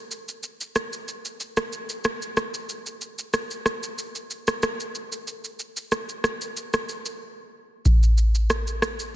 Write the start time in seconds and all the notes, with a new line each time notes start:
0.11 shaker
0.28 shaker
0.43 shaker
0.61 shaker
0.76 cross-stick, shaker
0.93 shaker
1.08 shaker
1.25 shaker
1.40 shaker
1.57 cross-stick, shaker
1.73 shaker
1.89 shaker
2.04 cross-stick, shaker
2.22 shaker
2.37 cross-stick, shaker
2.54 shaker
2.69 shaker
2.86 shaker
3.01 shaker
3.19 shaker
3.34 cross-stick, shaker
3.51 shaker
3.66 cross-stick, shaker
3.83 shaker
3.98 shaker
4.15 shaker
4.31 shaker
4.47 cross-stick, shaker
4.63 cross-stick, shaker
4.80 shaker
4.95 shaker
5.12 shaker
5.27 shaker
5.44 shaker
5.59 shaker
5.77 shaker
5.92 cross-stick, shaker
6.09 shaker
6.24 cross-stick, shaker
6.41 shaker
6.57 shaker
6.74 cross-stick, shaker
6.89 shaker
7.06 shaker
7.85 kick, shaker
8.03 shaker
8.18 shaker
8.35 shaker
8.50 cross-stick, shaker
8.67 shaker
8.82 cross-stick, shaker
9.00 shaker